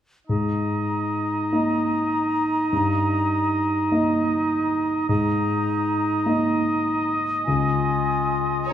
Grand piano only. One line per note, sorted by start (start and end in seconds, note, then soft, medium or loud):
0.29 1.48 G#2 soft
1.52 2.68 A#3 soft
1.52 2.68 D#4 soft
1.52 2.68 D#5 soft
2.72 3.87 G2 soft
3.91 5.05 A#3 soft
3.91 5.05 D#4 soft
3.91 5.06 D#5 soft
5.09 6.23 G#2 soft
6.26 7.42 A#3 soft
6.26 7.42 D#4 soft
6.26 7.42 D#5 soft
7.48 8.67 C#2 soft